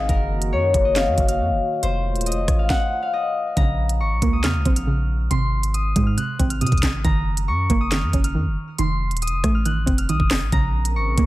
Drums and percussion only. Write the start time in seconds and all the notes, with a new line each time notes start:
0.09 kick, closed hi-hat
0.42 closed hi-hat
0.74 kick, closed hi-hat
0.96 snare, clap, closed hi-hat
1.18 kick, closed hi-hat
1.29 closed hi-hat
1.83 closed hi-hat
2.16 closed hi-hat
2.21 closed hi-hat
2.26 closed hi-hat
2.32 closed hi-hat
2.48 kick, cross-stick, closed hi-hat
2.70 kick, snare
3.57 kick, closed hi-hat
3.89 closed hi-hat
4.22 kick, closed hi-hat
4.44 snare, clap, closed hi-hat
4.65 kick, closed hi-hat
4.76 closed hi-hat
5.31 closed hi-hat
5.63 closed hi-hat
5.74 closed hi-hat
5.96 kick, closed hi-hat
6.18 closed hi-hat
6.40 kick, closed hi-hat
6.50 closed hi-hat
6.61 closed hi-hat
6.67 closed hi-hat
6.72 kick, closed hi-hat
6.78 closed hi-hat
6.83 kick, snare, clap, closed hi-hat
7.05 kick, closed hi-hat
7.37 closed hi-hat
7.70 kick, closed hi-hat
7.92 snare, clap, closed hi-hat
8.13 kick, closed hi-hat
8.24 closed hi-hat
8.78 closed hi-hat
9.11 closed hi-hat
9.17 closed hi-hat
9.22 closed hi-hat
9.27 closed hi-hat
9.44 kick, cross-stick, closed hi-hat
9.65 closed hi-hat
9.87 kick, closed hi-hat
9.98 closed hi-hat
10.09 closed hi-hat
10.20 kick
10.31 cross-stick, snare, clap, open hi-hat
10.52 kick, closed hi-hat
10.85 closed hi-hat
11.18 kick, closed hi-hat